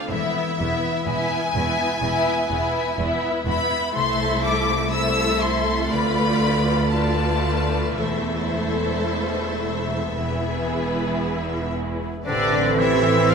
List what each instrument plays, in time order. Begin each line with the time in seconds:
Already playing: harp A3 C4 F4 C5 D5, violin section A4
0.08 double bass section E1, cello section E2, harp E3, viola section B3 E4, violin section E5
0.13 violin section E4 E5
0.36 harp E4
0.58 double bass section E1, cello section E2, viola section B3 E4, violin section E4 E5, harp B4
0.84 harp E4
1.06 double bass section E1, cello section E2, viola section B3 E4, violin section E4 E5 G#5, harp E5
1.31 harp B4
1.54 double bass section E1, cello section E2, viola section B3 E4, harp E4, violin section E4 E5
1.78 harp B3
2.01 double bass section E1, cello section E2, viola section B3 E4, harp E4, violin section E5
2.06 violin section E4
2.26 harp B3
2.49 double bass section E1, cello section E2, viola section B3 E4, violin section E4 E5, harp B4
2.74 harp E4
2.97 double bass section E1, cello section E2, viola section B3 E4, violin section E4 E5, harp E5
3.23 harp B4
3.45 double bass section E1, cello section E2, viola section B3 E4, harp E4, violin section E4 E5 B5
3.70 harp B3
3.95 cello section C2, double bass section C2, harp C3, viola section A3 E4, violin section A4 E5 C6
4.19 harp A3
4.43 harp E4, violin section D6
4.69 harp C5
4.91 viola section A3 E4, violin section A4 E5 E6, harp A4
5.18 harp C5
5.41 harp A3, violin section C6
5.67 harp C4
5.90 double bass section D2, cello section D2, harp D3, viola section A3 F4, violin section B4 D5 B5
6.18 harp B3
6.43 harp F4
6.69 harp A4
6.91 viola section A3 F4, harp B4, violin section B4 A5
6.95 violin section D5
7.19 harp A4
7.46 harp B3
7.72 harp A3
7.97 double bass section E1, cello section E2, harp E3, viola section A3 E4, violin section A4 C5 E5
8.27 harp E4
8.55 harp A4
8.81 harp C5
9.09 harp E5
9.36 harp C5
9.63 harp E4
9.90 harp C4
10.15 double bass section E1, cello section E2, harp E3, viola section B3 E4, violin section G#4 B4
10.43 harp E4
10.70 harp G#4
10.95 harp B4
11.21 harp E5
11.48 harp B4
11.76 harp E4
12.03 harp B3
12.26 double bass section A1, harp A2, viola section C3 C4, cello section D3, bassoon C4, oboe D4, violin section D4 D5, clarinet A4, french horn section B4, flute section E6
12.53 harp E3, viola section E3
12.78 viola section C3, cello section E3, harp C4, oboe E4, violin section E4 E5
13.04 viola section E3, harp E4
13.29 viola section C3, cello section F3, oboe F4, harp A4, french horn section A4, violin section F5